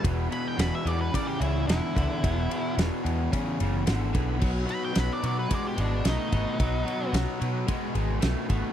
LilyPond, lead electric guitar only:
\new Staff \with { instrumentName = "Lead electric guitar" } { \time 4/4 \key e \major \tempo 4 = 110 r8 b''16 g''16 b''16 e''16 d''16 b'16 d''16 g'16 e'8 e'4~ | e'4 r2. | r8 b''16 g''16 b''16 d''16 d''16 b'16 d''16 g'16 d'8 dis'4~ | dis'4 r2. | }